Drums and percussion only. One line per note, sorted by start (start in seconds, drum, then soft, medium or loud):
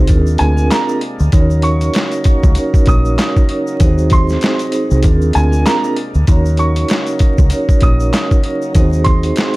0.07 kick loud
0.07 closed hi-hat loud
0.07 shaker medium
0.26 shaker medium
0.38 closed hi-hat medium
0.38 shaker medium
0.57 shaker medium
0.71 snare loud
0.71 clap loud
0.71 closed hi-hat medium
0.71 shaker medium
0.89 shaker medium
1.01 closed hi-hat medium
1.19 shaker medium
1.32 kick loud
1.32 closed hi-hat medium
1.32 shaker medium
1.51 shaker medium
1.62 closed hi-hat medium
1.62 shaker soft
1.81 closed hi-hat medium
1.81 shaker soft
1.94 snare loud
1.94 clap medium
1.94 closed hi-hat medium
1.94 shaker medium
2.12 closed hi-hat medium
2.12 shaker medium
2.24 kick loud
2.24 closed hi-hat medium
2.24 shaker medium
2.43 kick loud
2.43 shaker medium
2.55 closed hi-hat loud
2.55 shaker medium
2.74 kick loud
2.74 shaker medium
2.86 kick loud
2.86 closed hi-hat medium
2.86 shaker medium
3.05 shaker medium
3.19 snare loud
3.19 clap loud
3.19 closed hi-hat medium
3.19 shaker medium
3.37 kick medium
3.37 shaker soft
3.49 closed hi-hat medium
3.67 shaker medium
3.80 kick loud
3.80 closed hi-hat medium
3.80 shaker medium
3.98 shaker medium
4.10 kick loud
4.10 closed hi-hat medium
4.10 shaker soft
4.29 snare soft
4.29 shaker soft
4.41 snare loud
4.41 clap medium
4.41 closed hi-hat medium
4.41 shaker medium
4.59 closed hi-hat medium
4.59 shaker medium
4.72 closed hi-hat medium
4.72 shaker soft
4.91 shaker medium
5.03 kick loud
5.03 closed hi-hat loud
5.03 shaker medium
5.22 shaker medium
5.33 closed hi-hat medium
5.33 shaker medium
5.53 shaker medium
5.66 snare loud
5.66 clap loud
5.66 closed hi-hat medium
5.66 shaker medium
5.84 shaker soft
5.96 closed hi-hat medium
6.14 shaker soft
6.27 kick loud
6.27 closed hi-hat medium
6.27 shaker medium
6.45 shaker medium
6.57 closed hi-hat medium
6.57 shaker soft
6.76 closed hi-hat medium
6.76 shaker soft
6.88 snare loud
6.88 clap medium
6.88 closed hi-hat medium
6.88 shaker medium
7.07 closed hi-hat medium
7.07 shaker medium
7.19 kick medium
7.19 closed hi-hat medium
7.19 shaker medium
7.38 kick loud
7.38 shaker medium
7.50 closed hi-hat loud
7.50 shaker medium
7.69 kick loud
7.69 shaker medium
7.80 kick loud
7.80 closed hi-hat medium
7.80 shaker medium
8.00 shaker medium
8.13 snare loud
8.13 clap loud
8.13 closed hi-hat medium
8.13 shaker medium
8.31 kick medium
8.31 shaker medium
8.44 closed hi-hat medium
8.62 shaker medium
8.75 kick loud
8.75 closed hi-hat medium
8.75 shaker medium
8.93 shaker medium
9.05 kick loud
9.05 closed hi-hat medium
9.05 shaker soft
9.23 closed hi-hat medium
9.23 shaker soft
9.36 snare loud
9.36 clap loud
9.36 closed hi-hat medium
9.36 shaker medium